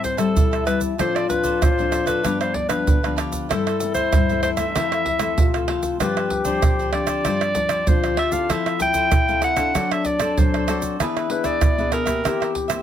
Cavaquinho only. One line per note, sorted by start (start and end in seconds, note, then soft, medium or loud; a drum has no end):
0.03 muted cavaquinho stroke soft
0.17 0.50 C5 medium
0.17 0.49 E5 soft
0.17 0.49 A5 medium
0.51 0.67 C5 soft
0.51 0.65 E5 soft
0.51 0.66 A5 medium
0.65 0.96 G4 medium
0.65 0.97 E5 medium
0.65 0.97 A5 medium
0.98 1.13 F4 medium
0.98 1.13 A4 medium
0.98 1.14 C5 medium
0.98 1.13 D5 medium
1.15 1.28 A4 soft
1.15 1.28 C5 soft
1.15 1.29 D5 soft
1.29 muted cavaquinho stroke soft
1.43 1.76 A4 medium
1.43 1.75 C5 medium
1.43 1.75 D5 medium
1.78 1.91 A4 soft
1.78 1.91 C5 soft
1.78 1.92 D5 medium
1.91 2.06 F4 medium
1.91 2.06 A4 soft
1.91 2.05 C5 medium
1.91 2.04 D5 medium
2.06 2.23 A4 medium
2.06 2.22 C5 medium
2.06 2.22 D5 medium
2.23 2.38 D4 medium
2.23 2.39 G4 medium
2.23 2.39 B4 medium
2.23 2.39 F5 medium
2.41 2.54 G4 soft
2.41 2.55 B4 soft
2.41 2.55 F5 soft
2.55 muted cavaquinho stroke soft
2.69 3.01 G4 medium
2.69 3.01 B4 medium
2.69 3.00 F5 medium
3.03 3.16 G4 soft
3.03 3.17 B4 soft
3.03 3.17 F5 soft
3.16 3.48 D4 medium
3.16 3.48 G4 medium
3.16 3.48 B4 medium
3.16 3.49 F5 medium
3.49 3.64 E4 medium
3.49 3.64 A4 medium
3.49 3.65 C5 medium
3.49 3.65 E5 medium
3.66 3.79 A4 soft
3.66 3.80 C5 soft
3.66 3.80 E5 soft
3.80 muted cavaquinho stroke soft
3.95 4.27 A4 medium
3.95 4.26 C5 medium
3.95 4.26 E5 medium
4.29 4.43 A4 soft
4.29 4.44 C5 soft
4.29 4.43 E5 soft
4.43 4.58 E4 medium
4.43 4.58 A4 soft
4.43 4.57 C5 medium
4.43 4.56 E5 soft
4.57 4.74 A4 medium
4.57 4.73 C5 medium
4.57 4.73 E5 medium
4.75 4.89 E4 medium
4.75 4.90 A4 medium
4.75 4.90 C5 medium
4.75 4.90 F5 medium
4.91 5.04 A4 soft
4.91 5.04 C5 soft
4.91 5.04 F5 soft
5.05 muted cavaquinho stroke soft
5.20 5.52 A4 medium
5.20 5.51 C5 medium
5.54 5.66 A4 soft
5.54 5.67 C5 soft
5.54 5.67 F5 medium
5.68 5.98 A4 medium
5.68 5.99 C5 medium
5.68 5.99 F5 medium
6.00 6.14 F4 medium
6.00 6.15 G4 medium
6.00 6.15 C5 medium
6.00 6.15 D5 medium
6.16 6.30 G4 soft
6.16 6.30 C5 soft
6.16 6.30 D5 soft
6.31 muted cavaquinho stroke soft
6.45 6.77 G4 medium
6.45 6.76 C5 medium
6.45 6.76 D5 medium
6.79 6.92 G4 soft
6.79 6.93 C5 soft
6.79 6.93 D5 soft
6.92 7.08 F4 medium
6.92 7.08 G4 medium
6.92 7.07 C5 soft
6.92 7.06 D5 soft
7.07 7.24 G4 medium
7.07 7.23 C5 medium
7.07 7.23 D5 medium
7.25 7.39 F4 medium
7.25 7.40 G4 medium
7.25 7.40 C5 medium
7.25 7.40 D5 medium
7.42 7.54 G4 soft
7.42 7.55 C5 soft
7.55 muted cavaquinho stroke soft
7.69 8.02 G4 medium
7.69 8.01 C5 medium
7.69 8.01 D5 medium
8.04 8.17 G4 soft
8.04 8.17 C5 soft
8.04 8.18 D5 soft
8.17 8.48 F4 medium
8.17 8.48 G4 medium
8.17 8.49 C5 medium
8.17 8.49 D5 medium
8.49 8.64 E4 medium
8.49 8.65 A4 medium
8.49 8.65 C5 medium
8.49 8.65 F5 medium
8.66 8.79 A4 soft
8.66 8.80 C5 soft
8.66 8.80 F5 soft
8.80 muted cavaquinho stroke soft
8.95 9.26 A4 medium
8.95 9.26 C5 medium
9.28 9.41 A4 soft
9.28 9.42 C5 soft
9.28 9.42 F5 medium
9.42 9.57 E4 soft
9.42 9.57 A4 soft
9.42 9.56 C5 medium
9.42 9.55 F5 medium
9.56 9.73 A4 medium
9.56 9.73 C5 medium
9.56 9.72 F5 medium
9.74 9.89 F#4 medium
9.74 9.90 A4 medium
9.74 9.90 C5 medium
9.74 9.90 D5 medium
9.91 10.04 A4 soft
9.91 10.04 C5 soft
9.91 10.05 D5 soft
10.05 muted cavaquinho stroke soft
10.19 10.51 A4 medium
10.19 10.51 C5 medium
10.19 10.50 D5 medium
10.54 10.67 A4 soft
10.54 10.68 C5 soft
10.54 10.68 D5 soft
10.67 10.98 F#4 medium
10.67 10.99 A4 medium
10.67 10.99 C5 medium
10.67 10.99 D5 medium
11.01 11.15 D4 medium
11.01 11.15 G#4 medium
11.01 11.15 B4 medium
11.01 11.15 E5 medium
11.17 11.29 G#4 soft
11.17 11.29 B4 soft
11.17 11.29 E5 soft
11.30 muted cavaquinho stroke soft
11.44 11.76 G#4 medium
11.44 11.76 B4 medium
11.44 11.75 E5 medium
11.78 11.91 G#4 soft
11.78 11.92 B4 soft
11.78 11.92 E5 soft
11.91 12.07 D4 medium
11.91 12.06 G#4 medium
11.91 12.05 B4 medium
11.91 12.04 E5 medium
12.05 12.23 G#4 medium
12.05 12.22 B4 medium
12.05 12.22 E5 medium
12.24 12.38 E4 medium
12.24 12.39 A#4 medium
12.24 12.39 C5 medium
12.24 12.39 E5 medium
12.40 12.53 A#4 soft
12.40 12.53 C5 soft
12.40 12.54 E5 soft
12.54 muted cavaquinho stroke soft
12.68 12.82 A#4 medium
12.68 12.82 C5 medium
12.68 12.82 E5 medium